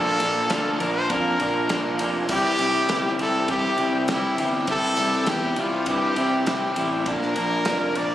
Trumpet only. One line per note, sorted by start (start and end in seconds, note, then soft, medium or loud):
0.00 0.75 A4 loud
0.79 0.96 A#4 medium
0.95 1.12 C5 loud
1.10 2.00 A#4 medium
2.32 3.16 G4 loud
3.22 3.48 A4 loud
3.51 4.05 G4 loud
4.12 4.52 E4 medium
4.71 5.32 A4 loud
5.30 5.62 G4 medium
5.60 5.89 F4 medium
5.90 6.74 G4 medium
7.08 7.98 A#4 medium
7.97 8.15 D5 medium